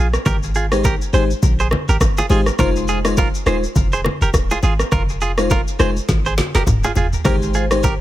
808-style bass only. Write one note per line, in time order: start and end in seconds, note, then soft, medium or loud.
0.00 0.17 A#1 medium
0.26 0.97 G#1 loud
1.13 1.34 G#1 loud
1.43 1.75 A#1 medium
1.89 1.97 G#1 medium
2.01 2.21 G1 loud
2.30 2.50 G#1 loud
2.59 3.30 F1 loud
3.46 3.67 D#1 medium
3.76 4.08 F1 medium
4.21 4.30 F1 medium
4.34 4.54 D#1 loud
4.63 4.83 G#1 medium
4.92 5.63 F1 loud
5.80 6.00 F1 medium
6.09 6.41 G#1 loud
6.55 6.63 F1 medium
6.67 6.87 D#1 loud
6.96 7.17 F1 medium
7.25 7.96 G#1 loud